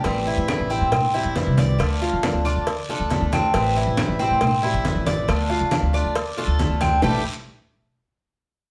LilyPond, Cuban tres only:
\new Staff \with { instrumentName = "Cuban tres" } { \time 4/4 \key a \minor \tempo 4 = 138 c'8 e'4 c'4 e'4 d''8~ | d''8 f'4 d''4 a'4 c'8 | c'8 e'4 c'4 e'4 d''8~ | d''8 f'4 d''4 a'4 c'8 |
<a e' g'>8 r2. r8 | }